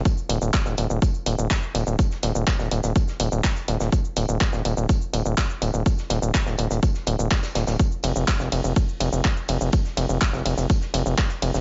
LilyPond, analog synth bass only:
\new Staff \with { instrumentName = "Analog synth bass" } { \clef bass \time 4/4 \key ees \mixolydian \tempo 4 = 124 r8 ees,,16 ees,,16 r16 ees,,16 ees,,16 ees,,16 r8 ees,,16 ees,,16 r8 ees,,16 ees,,16 | r8 ees,,16 ees,,16 r16 ees,,16 ees,,16 ees,,16 r8 ees,,16 ees,,16 r8 ees,,16 ees,,16 | r8 ees,,16 ees,,16 r16 ees,,16 ees,,16 ees,,16 r8 ees,,16 ees,,16 r8 ees,,16 ees,,16 | r8 ees,,16 ees,,16 r16 ees,,16 ees,,16 ees,,16 r8 ees,,16 ees,,16 r8 ees,,16 ees,,16 |
r8 f,,16 f,,16 r16 f,,16 f,,16 f,,16 r8 f,,16 f,,16 r8 f,,16 f,,16 | r8 f,,16 f,,16 r16 f,,16 f,,16 f,,16 r8 f,,16 f,,16 r8 f,,16 f,,16 | }